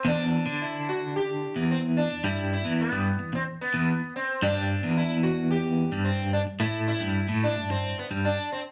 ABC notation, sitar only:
X:1
M:4/4
L:1/8
Q:1/4=110
K:Em
V:1 name="Sitar"
D2 E F G2 C D | E E B,2 C B,2 C | D2 E F G2 C D | E E2 D C B, D C |]